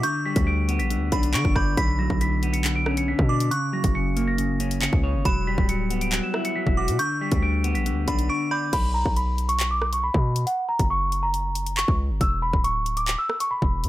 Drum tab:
CC |----------------|----------------|----------------|----------------|
HH |x--x--xxx-xx----|x---x-xxx--x---x|x--x--x-x-xx----|x---x-xxx--x---x|
CP |------------x---|--------x-------|------------x---|--------x-------|
SD |--------------r-|----------r-----|----------------|----------r-----|
BD |---o------o--oo-|o--o---------o--|---o---------o--|o--o---------o--|

CC |----------------|x---------------|----------------|----------------|
HH |x--x--xxx-xx----|x---x-xxx--x---x|x--x--x-x-xx----|x---x-xxx--x---x|
CP |----------------|--------x-------|------------x---|--------x-------|
SD |----------------|----------r-----|----------------|----------r-----|
BD |---o------o-----|o--o---------o--|---o---------o--|o--o---------o--|